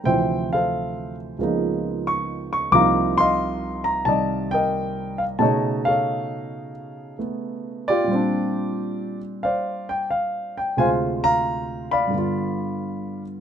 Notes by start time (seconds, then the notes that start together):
0.04 D2 C3 F3 C5 E5 G5
0.08 E3
0.53 A4 C5 F5
1.39 C#2 C#3 F3 A#3 B3
1.43 D#4
2.07 C#6
2.53 C#6
2.72 C2 C3 F3 A#3 F4 F5 A#5 D6
2.76 D#4
3.18 D#5 F5 C6
3.84 A#5
4.05 C3 D#3 G3 C4 D5 D#5 A5
4.51 A#4 D#5 G5
5.18 F5
5.39 B2 C#3 A3 D#4 C#5 D#5 A5
5.85 A4 C#5 F5
7.19 A3 B3
7.88 F4 G4 D5
8.04 A#2 G3
8.12 C4 D4
9.43 C5 D5 F5
9.89 G5
10.11 F5
10.57 G5
10.77 D2 C3 G#3 F4 C5 F5 G#5
11.24 F5 A#5
11.91 D5 F5 B5
12.08 G2 D3
12.14 B3 F4